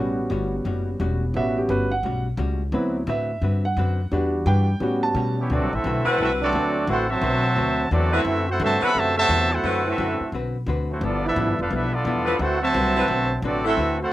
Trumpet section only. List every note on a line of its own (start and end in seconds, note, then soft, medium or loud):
5.40 5.50 B3 medium
5.40 5.50 E4 medium
5.40 5.50 G4 medium
5.40 5.50 C#5 medium
5.53 5.72 C4 medium
5.53 5.73 F#4 medium
5.53 5.73 A4 medium
5.53 5.73 D5 medium
5.73 6.07 C4 medium
5.73 6.07 F#4 medium
5.73 6.07 A4 medium
5.73 6.07 E5 medium
6.08 6.20 E4 medium
6.08 6.20 A4 medium
6.08 6.20 C5 medium
6.08 6.20 F#5 medium
6.21 6.30 C4 medium
6.21 6.30 F#4 medium
6.21 6.30 A4 medium
6.21 6.31 E5 loud
6.43 6.86 C4 medium
6.43 6.86 F#4 medium
6.43 6.86 A4 medium
6.43 6.86 D5 loud
6.90 7.09 E4 medium
6.90 7.09 A4 medium
6.90 7.09 C5 medium
6.90 7.09 F#5 loud
7.10 7.88 F#4 medium
7.10 7.88 C5 medium
7.10 7.88 E5 medium
7.10 7.88 A5 loud
7.92 8.13 C4 medium
7.92 8.13 F#4 medium
7.92 8.13 A4 medium
7.92 8.13 D5 loud
8.14 8.48 C4 medium
8.14 8.48 F#4 medium
8.14 8.48 A4 medium
8.14 8.48 E5 loud
8.49 8.60 E4 medium
8.49 8.60 A4 medium
8.49 8.60 C5 medium
8.49 8.61 F#5 loud
8.63 8.82 F#4 loud
8.63 8.82 C5 loud
8.63 8.82 E5 loud
8.63 8.82 A5 loud
8.83 8.96 A4 medium
8.83 8.96 E5 loud
8.83 8.96 F#5 loud
8.83 8.96 B5 loud
8.97 9.17 F#4 medium
8.97 9.17 C5 loud
8.97 9.16 E5 loud
8.97 9.16 A5 loud
9.18 9.49 F#4 loud
9.18 9.49 C5 loud
9.18 9.49 E5 loud
9.18 9.49 A5 loud
9.53 9.86 E4 medium
9.53 9.86 A4 medium
9.53 9.86 C5 medium
9.53 9.86 F#5 loud
9.89 10.31 C4 medium
9.89 10.31 F#4 medium
9.89 10.31 A4 medium
9.89 10.31 E5 medium
10.91 11.02 A3 medium
10.91 11.02 E4 medium
10.91 11.02 F#4 medium
10.91 11.02 C5 medium
11.04 11.24 B3 medium
11.04 11.24 F4 medium
11.04 11.24 A4 medium
11.04 11.24 D5 medium
11.26 11.57 D4 medium
11.26 11.57 A4 medium
11.26 11.57 B4 medium
11.26 11.57 E5 medium
11.61 11.71 D4 medium
11.61 11.71 A4 medium
11.61 11.71 B4 medium
11.61 11.71 F5 medium
11.73 11.94 D4 medium
11.73 11.93 A4 medium
11.73 11.94 B4 medium
11.73 11.94 E5 loud
11.94 12.40 B3 medium
11.94 12.41 F4 medium
11.94 12.40 A4 medium
11.94 12.41 D5 loud
12.41 12.62 E4 loud
12.41 12.62 A4 medium
12.41 12.61 C5 medium
12.41 12.62 F#5 loud
12.63 13.40 F#4 medium
12.63 13.40 C5 medium
12.63 13.40 E5 medium
12.63 13.40 A5 loud
13.46 13.66 C4 medium
13.46 13.66 F#4 medium
13.46 13.66 A4 medium
13.46 13.66 D5 loud
13.67 13.98 C4 medium
13.67 13.98 F#4 medium
13.67 13.98 A4 medium
13.67 13.98 E5 loud
14.02 14.13 E4 medium
14.02 14.13 A4 medium
14.02 14.13 C5 loud
14.02 14.13 F#5 loud